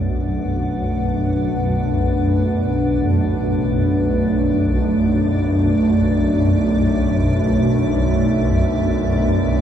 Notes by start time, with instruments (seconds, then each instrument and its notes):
Already playing: synth drone B1 F#2, analog synth pad A3 D4 B4 F#5, ambient pad D5
1.18 kettle gongs B2
3.00 kettle gongs E3
3.17 kettle gongs A2
3.33 kettle gongs F#4
5.78 analog synth pad E5